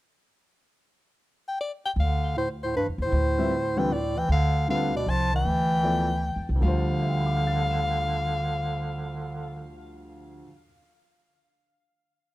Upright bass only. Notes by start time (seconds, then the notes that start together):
1.96 D2
2.86 E2
2.98 D#2
3.12 D2
4.29 D2
5.06 C2
5.45 D2
6.36 E2
6.49 C2
6.62 D2